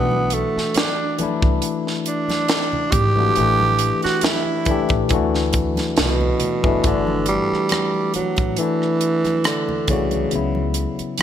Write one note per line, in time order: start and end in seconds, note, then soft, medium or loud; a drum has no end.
0.00 0.41 B1 medium
0.00 1.02 E3 medium
0.00 1.03 A3 medium
0.00 0.35 B3 medium
0.00 1.04 D4 medium
0.00 1.05 F#4 medium
0.11 muted conga soft
0.11 high conga medium
0.30 0.78 A3 medium
0.30 closed hi-hat medium
0.56 muted upright bass stroke soft
0.56 snare soft
0.74 1.20 D4 medium
0.74 snare loud
0.74 closed hi-hat medium
0.74 high conga medium
1.18 2.71 E3 medium
1.18 2.72 A3 medium
1.18 2.72 D4 medium
1.18 muted upright bass stroke soft
1.18 closed hi-hat medium
1.18 high conga medium
1.23 2.73 E4 medium
1.42 1.59 C2 medium
1.42 kick loud
1.62 closed hi-hat medium
1.62 muted conga soft
1.87 snare soft
2.06 2.93 D4 medium
2.06 closed hi-hat medium
2.29 snare soft
2.29 closed hi-hat soft
2.29 high conga medium
2.48 snare loud
2.48 closed hi-hat medium
2.48 muted conga soft
2.73 muted conga soft
2.73 low conga medium
2.91 3.27 G#1 medium
2.91 4.02 G4 loud
2.91 kick medium
2.91 closed hi-hat medium
2.91 low conga medium
3.15 3.33 E3 medium
3.15 3.34 A3 medium
3.15 3.35 D4 medium
3.15 high conga medium
3.20 3.36 F#4 medium
3.36 3.89 A1 loud
3.36 4.51 E3 medium
3.36 4.51 A3 medium
3.36 closed hi-hat medium
3.36 muted conga soft
3.40 4.52 D4 medium
3.40 4.53 G4 medium
3.59 muted conga soft
3.59 high conga medium
3.79 closed hi-hat medium
4.02 4.26 F#4 medium
4.02 muted upright bass stroke soft
4.02 snare soft
4.02 closed hi-hat soft
4.21 5.11 E4 medium
4.21 snare loud
4.21 closed hi-hat medium
4.21 muted conga soft
4.21 high conga medium
4.45 muted conga soft
4.65 5.09 E3 medium
4.65 5.10 A3 medium
4.65 muted upright bass stroke soft
4.65 kick medium
4.65 closed hi-hat medium
4.65 high conga medium
4.65 low conga medium
4.70 5.12 D4 medium
4.70 5.12 G4 medium
4.89 5.11 A1 medium
4.89 kick medium
4.89 closed hi-hat soft
5.09 5.79 D2 loud
5.09 6.42 E3 medium
5.09 6.43 A3 medium
5.09 kick medium
5.09 closed hi-hat medium
5.09 muted conga soft
5.13 6.44 D4 medium
5.13 6.44 F#4 medium
5.34 snare soft
5.53 kick medium
5.53 closed hi-hat medium
5.76 snare soft
5.76 closed hi-hat soft
5.76 high conga medium
5.97 6.32 C2 medium
5.97 6.87 B2 medium
5.97 snare loud
5.97 closed hi-hat medium
6.21 muted conga soft
6.21 low conga medium
6.40 closed hi-hat medium
6.40 low conga medium
6.63 6.80 F#1 medium
6.63 6.81 E3 medium
6.63 6.82 A3 medium
6.63 6.82 D4 medium
6.63 kick medium
6.63 high conga medium
6.68 6.83 E4 medium
6.84 7.37 G1 medium
6.84 7.27 D3 loud
6.84 8.36 E3 medium
6.84 8.37 A3 medium
6.84 8.37 D4 medium
6.84 kick loud
6.84 closed hi-hat medium
6.84 muted conga soft
6.88 8.38 F#4 medium
7.07 muted conga soft
7.07 high conga medium
7.26 8.11 G3 medium
7.26 closed hi-hat medium
7.52 muted upright bass stroke soft
7.52 cross-stick soft
7.69 cross-stick loud
7.69 closed hi-hat medium
7.69 high conga medium
7.94 muted conga soft
8.14 8.60 F#3 medium
8.14 muted upright bass stroke soft
8.14 closed hi-hat medium
8.14 high conga medium
8.36 8.54 A1 medium
8.36 kick medium
8.36 closed hi-hat soft
8.57 9.72 E3 medium
8.57 9.47 E3 medium
8.57 9.73 A3 medium
8.57 closed hi-hat medium
8.57 muted conga soft
8.61 9.74 D4 medium
8.61 9.75 E4 medium
8.82 cross-stick soft
9.01 closed hi-hat medium
9.25 cross-stick soft
9.25 closed hi-hat soft
9.25 high conga medium
9.44 9.89 D3 medium
9.44 cross-stick loud
9.44 closed hi-hat medium
9.69 muted conga soft
9.69 low conga medium
9.88 10.22 C2 medium
9.88 10.72 C#3 medium
9.88 10.26 E3 medium
9.88 10.27 A3 medium
9.88 10.28 D5 medium
9.88 kick medium
9.88 closed hi-hat medium
9.88 low conga medium
9.93 10.29 F#4 medium
10.11 closed hi-hat soft
10.11 high conga medium
10.31 10.85 C#2 medium
10.31 11.23 C#3 medium
10.31 11.23 F#3 medium
10.31 11.23 B3 medium
10.31 closed hi-hat medium
10.35 11.23 E4 medium
10.55 muted conga soft
10.55 high conga medium
10.74 closed hi-hat medium
10.99 muted upright bass stroke soft
10.99 closed hi-hat soft
11.18 closed hi-hat medium
11.18 muted conga soft
11.18 high conga medium